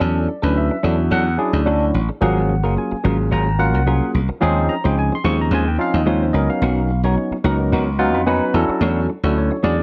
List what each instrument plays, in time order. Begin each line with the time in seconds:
Already playing: tine electric piano F#3 C#4 D4 E4 A4
0.00 slap bass E2, clean electric guitar F#3 C#4 D4 A4, tine electric piano D5
0.28 muted clean electric guitar stroke
0.42 slap bass D2, tine electric piano F#3 C#4 D4 E4 B4, clean electric guitar C#4 D4 A4
0.55 tine electric piano E5, muted clean electric guitar stroke
0.71 muted clean electric guitar stroke
0.83 slap bass E2, tine electric piano F#3 C#4 D4 E4 F#4, clean electric guitar F#3 C#4 D4 A4
0.98 muted clean electric guitar stroke
1.11 slap bass E2, clean electric guitar F#3 C#4 D4 A4, tine electric piano F#5
1.26 muted clean electric guitar stroke
1.38 tine electric piano F#3 C#4 D4 E4 G#4 D5
1.53 slap bass D2, muted clean electric guitar stroke
1.65 tine electric piano F#3 C#4 D4 E4 F#4, clean electric guitar F#3 C#4 D4 A4
1.94 slap bass A1, muted clean electric guitar stroke
2.08 tine electric piano E4 G#4, muted clean electric guitar stroke
2.21 slap bass G#1, tine electric piano F3 F#3 A#3 C#4 G#4 F#5, clean electric guitar F#3 C#4 F4 A#4
2.49 muted clean electric guitar stroke
2.63 slap bass F#1, tine electric piano F#3 A#3 C#4 F4 G#4, clean electric guitar C#4 F4 A#4
2.77 tine electric piano G#5, muted clean electric guitar stroke
2.92 muted clean electric guitar stroke, muted slap bass stroke
3.03 slap bass G#1, tine electric piano F#3 A#3 C#4 F4 G#4, clean electric guitar F#3 C#4 F4 A#4
3.19 muted clean electric guitar stroke
3.31 slap bass G#1, clean electric guitar F#3 C#4 F4 A#4, tine electric piano A#5
3.47 muted clean electric guitar stroke
3.59 tine electric piano F#3 A#3 C#4 F4 A#4 F#5
3.74 slap bass C2, muted clean electric guitar stroke
3.86 tine electric piano F#3 A#3 C#4 F4 G#4, clean electric guitar F#3 C#4 F4 A#4
4.14 slap bass C2, muted clean electric guitar stroke
4.28 tine electric piano F4 A#4, muted clean electric guitar stroke, muted slap bass stroke
4.41 slap bass D#2, tine electric piano F3 C4 C#4 D#4 G#4, clean electric guitar G#3 C#4 F4 C5
4.69 tine electric piano A#5, muted clean electric guitar stroke
4.84 slap bass C#2, tine electric piano F3 C4 C#4 D#4 G#4 G5, clean electric guitar C#4 F4 C5
4.97 tine electric piano G#5, muted clean electric guitar stroke
5.12 tine electric piano C6, muted clean electric guitar stroke
5.24 slap bass D#2, tine electric piano F3 C4 C#4 D#4 G#4 C#6, clean electric guitar G#3 C#4 F4 C5
5.39 tine electric piano A#5, muted clean electric guitar stroke
5.51 slap bass D#2, clean electric guitar G#3 C#4 F4 C5, tine electric piano G#5
5.67 tine electric piano G5, muted clean electric guitar stroke
5.78 tine electric piano F3 C4 C#4 D#4 F4 F5
5.94 slap bass D#2, tine electric piano D#5, muted clean electric guitar stroke
6.06 tine electric piano F3 C4 C#4 D#4 F4 C#5, clean electric guitar G#3 C#4 F4 C5
6.23 tine electric piano C5
6.33 slap bass C#2, tine electric piano F#3 B3 C#4 D#4 A#4 D#5, muted clean electric guitar stroke
6.50 tine electric piano F5, muted clean electric guitar stroke
6.62 slap bass B1, clean electric guitar B3 D#4 F#4 A#4
6.90 muted clean electric guitar stroke
7.03 slap bass B1, tine electric piano F#3 B3 C#4 D#4 C#5, clean electric guitar D#4 F#4 A#4
7.17 muted clean electric guitar stroke
7.31 muted slap bass stroke, muted clean electric guitar stroke
7.44 slap bass C#2, tine electric piano F#3 B3 C#4 D#4 A#4, clean electric guitar B3 D#4 F#4 A#4
7.72 slap bass C#2, clean electric guitar B3 D#4 F#4 A#4
7.87 muted clean electric guitar stroke
7.99 tine electric piano F#3 B3 C#4 D#4 F4 F#5
8.14 slap bass F2, muted clean electric guitar stroke
8.26 tine electric piano F#3 B3 C#4 D#4 B4 G#5, clean electric guitar B3 D#4 F#4 A#4
8.54 slap bass E2, tine electric piano F#3 C#4 D4 E4 A4 C#5, muted clean electric guitar stroke
8.69 muted slap bass stroke, muted clean electric guitar stroke
8.81 slap bass E2, clean electric guitar A3 D4 F#4 C#5
9.09 muted clean electric guitar stroke
9.23 slap bass D2, tine electric piano F#3 C#4 D4 E4 A4, clean electric guitar D4 F#4 C#5
9.37 tine electric piano C#5, muted clean electric guitar stroke
9.51 muted clean electric guitar stroke
9.63 slap bass E2, tine electric piano F#3 C#4 D4 E4 G#4 D5, clean electric guitar A3 D4 F#4 C#5
9.79 muted clean electric guitar stroke